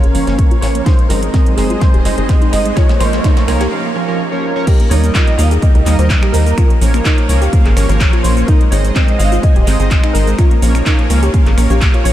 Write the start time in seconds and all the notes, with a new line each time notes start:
Already playing: A#3 C#4 A#4 C#5 F5, riser
0.04 G#1 G#4, closed hi-hat
0.15 G#1 F3 A#3 C#4 A#4 C#5, open hi-hat
0.27 G#1 F3 A#3 C#4 A#4 C#5, snare, closed hi-hat
0.39 F3 A#3 C#4 A#4 C#5, kick, closed hi-hat
0.51 F4, closed hi-hat
0.61 A#1 F3 A#3 C#4 A#4 C#5, snare, open hi-hat
0.75 A#3, closed hi-hat
0.85 G#3 C4 D#4 G#4 C5 D#5, kick, snare, closed hi-hat
0.99 G#3, closed hi-hat
1.09 G#1 G#3 C4 D#4 A#4 C5 D#5, snare, open hi-hat
1.23 G#3 C4 D#4 C5 D#5, closed hi-hat
1.34 G#3 C4 D#4 C5 D#5, kick, snare, closed hi-hat
1.46 G#3, closed hi-hat
1.56 G#1 G#3 C4 D#4 G#4 C5 D#5, snare, open hi-hat
1.70 F4, closed hi-hat
1.80 G#3 C4 D#4 C5 G#5, kick, snare, closed hi-hat
1.94 D#1 G4, closed hi-hat
2.05 G#1 G#3 C4 D#4 C5 D#5, snare, open hi-hat
2.18 G#1 G#3 C4 D#4 G#4 C5 D#5, closed hi-hat
2.29 G#3 C4 D#4 C5 D#5, kick, snare, closed hi-hat
2.42 D#4, closed hi-hat
2.51 G#1 G#3 C4 D#4 C5 D#5, snare, open hi-hat
2.65 G#3, closed hi-hat
2.75 F3 A#3 C#4 F4 A#4 C#5 F5, kick, snare, closed hi-hat
2.89 A#3, snare, closed hi-hat
2.99 A#1 F3 A#3 C#4 A#4 C5 C#5, snare, open hi-hat
3.13 F3 A#3 C#4 A#4 C#5, snare, closed hi-hat
3.24 F3 A#3 C#4 D#4 A#4 C#5, kick, snare, closed hi-hat
3.37 A#3, snare, closed hi-hat
3.47 C#2 F3 A#3 C#4 A#4 C#5, snare, open hi-hat
3.61 G4, snare, closed hi-hat
3.72 F3 A#3 C#4 A#4 F5
3.96 F3 A#3 C#4 A#4 C#5
4.08 F3 A#3 C#4 A#4 C#5
4.32 F3 A#3 C#4 A#4 C#5
4.56 F3 A#3 C#4 A#4 C#5
4.66 G3 A#3 D#4 G4 A#4 D#5, kick, closed hi-hat, crash, shaker
4.80 A#3, closed hi-hat
4.89 D#2 G3 A#3 D#4 A#4 C#5 D#5, open hi-hat, shaker
5.04 G3 A#3 D#4 A#4 D#5, closed hi-hat, shaker
5.13 A#3 D#4 F4 A#4 D#5, kick, clap, closed hi-hat, shaker
5.27 A#3, closed hi-hat
5.37 D#2 G3 A#3 D#4 A#4 D#5 F5, open hi-hat, shaker
5.51 G#4, closed hi-hat, shaker
5.61 G3 A#3 D#4 A#4 D#5 G5, kick, closed hi-hat, shaker
5.75 C#2 A#4, closed hi-hat
5.86 D#2 G3 A#3 D#4 A#4 D#5, clap, open hi-hat, shaker
5.99 D#2 G3 A#3 D#4 A#4 C5 D#5, closed hi-hat, shaker
6.10 G3 A#3, kick, clap, closed hi-hat, shaker
6.23 G4, finger snap, closed hi-hat
6.32 D#2 G3 A#3 D#4 A#4 D#5, open hi-hat, shaker
6.46 A#3, closed hi-hat, shaker
6.58 F3 A#3 C#4 F4 A#4 C#5 F5, finger snap, kick, closed hi-hat, shaker
6.70 A#3, closed hi-hat
6.81 A#1 F3 A#3 C#4 A#4 C#5, open hi-hat, shaker
6.94 F3 A#3 C#4 A#4 C#5, finger snap, closed hi-hat, shaker
7.05 F3 A#3 C#4 D#4 A#4 C#5, kick, clap, closed hi-hat, shaker
7.18 A#3, closed hi-hat
7.29 C#2 F3 A#3 C#4 A#4 C#5, open hi-hat, shaker
7.42 G4, closed hi-hat, shaker
7.53 F3 A#3 C#4 A#4 F5, kick, closed hi-hat, shaker
7.65 G#1 G#4, clap, closed hi-hat
7.77 G#1 F3 A#3 C#4 A#4 C#5, finger snap, open hi-hat, shaker
7.89 G#1 F3 A#3 C#4 A#4 C#5, closed hi-hat, shaker
8.00 F3 A#3 C#4 A#4 C#5, kick, clap, closed hi-hat, shaker
8.13 F4, closed hi-hat
8.23 A#1 F3 A#3 C#4 A#4 C5 C#5, open hi-hat, shaker
8.37 A#3, closed hi-hat, shaker
8.47 G#3 C4 D#4 G#4 A#4 C5 D#5, kick, closed hi-hat, shaker
8.61 G#3, closed hi-hat
8.70 G#1 G#3 C4 D#4 C5 C#5 D#5, open hi-hat, shaker
8.84 G#3 C4 D#4 C5 D#5, closed hi-hat, shaker
8.94 G#3 C4 D#4 C5 D#5, kick, clap, closed hi-hat, shaker
9.08 G#3, closed hi-hat
9.18 G#1 G#3 C4 D#4 C5 D#5 F5, open hi-hat, shaker
9.32 F4, closed hi-hat, shaker
9.42 G#3 C4 D#4 C5 D#5 G#5, kick, closed hi-hat, shaker
9.56 D#1 G4, closed hi-hat
9.67 G#1 G#3 C4 D#4 C5 D#5, clap, open hi-hat, shaker
9.80 G#1 G#3 C4 D#4 G#4 C5 D#5, closed hi-hat, shaker
9.91 G#3, kick, clap, closed hi-hat, shaker
10.04 D#4, finger snap, closed hi-hat
10.13 G#1 G#3 C4 D#4 A#4 C5 D#5, open hi-hat, shaker
10.27 G#3, closed hi-hat, shaker
10.39 F3 A#3 C#4 F4 A#4 C#5 F5, finger snap, kick, closed hi-hat, shaker
10.51 A#3, closed hi-hat
10.62 A#1 F3 A#3 C#4 A#4 C#5, open hi-hat, shaker
10.75 F3 A#3 C#4 A#4 C#5, finger snap, closed hi-hat, shaker
10.86 F3 A#3 C#4 D#4 A#4 C#5, kick, clap, closed hi-hat, shaker
10.99 A#3, closed hi-hat
11.10 C#2 F3 A#3 C#4 A#4 C#5, open hi-hat, shaker
11.23 G4, closed hi-hat, shaker
11.34 F3 A#3 C#4 A#4 F5, kick, closed hi-hat, shaker
11.46 G#1 G#4, clap, closed hi-hat
11.58 A#1 F3 A#3 C#4 A#4 C#5, finger snap, open hi-hat, shaker
11.70 A#1 F3 A#3 C#4 G4 A#4 C#5, closed hi-hat, shaker
11.81 A#3, kick, clap, closed hi-hat, shaker
11.94 F3 A#3 C#4 F4 A#4 C#5, closed hi-hat
12.04 A#1 A#3 C#5, open hi-hat, shaker